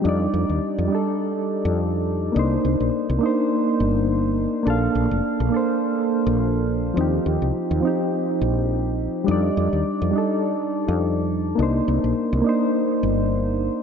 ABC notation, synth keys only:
X:1
M:4/4
L:1/8
Q:"Swing 16ths" 1/4=104
K:Fmix
V:1 name="Synth keys"
[G,DEd]3 [G,DEA]4- [G,DEA] | [B,DEc]3 [B,DEc]4- [B,DEc] | [B,DAf]3 [B,DAc]4- [B,DAc] | [F,CEG]3 [F,CEG]4- [F,CEG] |
[G,DEd]3 [G,DEA]4- [G,DEA] | [B,DEc]3 [B,DEc]4- [B,DEc] |]